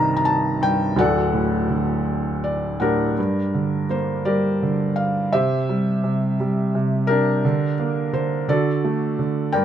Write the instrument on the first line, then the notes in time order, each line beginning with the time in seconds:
felt piano
Already playing: C2 G2 C3 D#3 C5 D#5 G5 A5 A#5
0.17 A#5
0.25 A5
0.61 G2 G5
0.96 D1 D2 D5 F#5
1.01 A4
1.33 A2
1.69 D3
2.44 D5
2.80 A2 D4 G4 A#4 F#5
3.18 G2
3.54 D3
3.90 A#3 C5
4.25 G3 G4 A#4 D5
4.63 D3
4.96 F5
5.33 C3 G4 C5 E5
5.69 G3
6.04 C3
6.40 G3
6.75 C3
7.07 D4 G4 A#4
7.45 D3
7.80 A#3
8.13 D3 C5
8.48 D3 F#4 A4 D5
8.84 A3
9.19 D3
9.53 G2 A#4 D5 G5